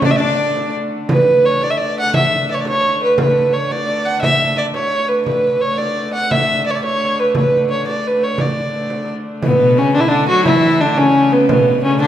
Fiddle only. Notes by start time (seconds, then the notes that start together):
0.05 D5
0.11 E5
0.17 D5
1.11 B4
1.46 C#5
1.64 D5
1.70 E5
1.78 D5
2.00 F#5
2.16 E5
2.51 C#5 D5
2.61 D5
2.69 C#5
3.03 B4
3.21 B4
3.53 C#5
3.72 D5
4.05 F#5
4.22 E5
4.58 D5
4.75 C#5
5.08 B4
5.26 B4
5.61 C#5
5.78 D5
6.13 F#5
6.32 E5
6.66 D5
6.71 C#5
6.76 D5
6.84 C#5
7.20 B4
7.37 B4
7.71 C#5
7.87 D5
8.08 B4
8.24 C#5
8.41 D5
9.44 B3
9.78 C#4
9.95 D4
10.01 E4
10.08 D4
10.29 F#4
10.45 E4
10.81 D4
10.97 C#4
11.33 B3
11.50 B3
11.84 C#4
12.00 D4